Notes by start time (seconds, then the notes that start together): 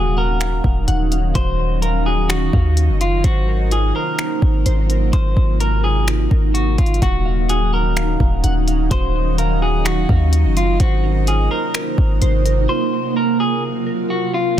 Already playing: D#1 D#3 F#3 C#4 D#4 F#4 G#4 F5 F#5
0.17 A#4 F#5
0.40 F5, finger snap, closed hi-hat
0.64 D#1, kick
0.88 D#1 F#5, closed hi-hat
1.12 F5, closed hi-hat
1.35 D#1 F#4 C5, kick, closed hi-hat
1.82 A#4 F5, closed hi-hat
2.06 F#4 G#4
2.29 F#4, finger snap, closed hi-hat
2.53 D#2 F5, kick
2.77 closed hi-hat
2.89 F#1
3.01 F4, closed hi-hat
3.24 G#1 C3 A#3 F#4 C5, kick, closed hi-hat
3.48 A#4
3.71 F4 G#4, closed hi-hat
3.95 A#4 C5
4.19 A#4, finger snap, closed hi-hat
4.42 G#1, kick
4.66 G#1 C5, closed hi-hat
4.90 A#4, closed hi-hat
5.13 G#1 D#4 F4 C5, kick, closed hi-hat
5.37 G#1, kick
5.60 A#4, closed hi-hat
5.84 F4 G#4
6.08 finger snap, closed hi-hat
6.30 G#1 A#4, kick
6.54 F#4, closed hi-hat
6.78 G#1 F4, kick, closed hi-hat
6.86 closed hi-hat
6.94 closed hi-hat
7.02 D#1 D#3 F#3 C#4 D#4 F#4 F#5, kick, closed hi-hat
7.25 F5
7.49 F#4 G#4, closed hi-hat
7.72 A#4 F#5
7.96 F5, finger snap, closed hi-hat
8.20 D#1, kick
8.44 D#1 F#5, closed hi-hat
8.68 F5, closed hi-hat
8.91 D#1 F#4 C5, kick, closed hi-hat
9.38 A#4 F5, closed hi-hat
9.62 F#4 G#4
9.85 F#4, finger snap, closed hi-hat
10.09 D#2 F5, kick
10.33 closed hi-hat
10.45 F#1
10.57 F4, closed hi-hat
10.80 G#1 C3 A#3 F#4 C5, kick, closed hi-hat
11.04 A#4
11.27 F4 G#4, closed hi-hat
11.51 A#4 C5
11.74 A#4, finger snap, closed hi-hat
11.98 G#1, kick
12.22 G#1 C5, closed hi-hat
12.45 A#4, closed hi-hat
12.69 F4 C5
13.16 A#4
13.40 F4 G#4
13.87 A#4
14.10 F#4
14.34 F4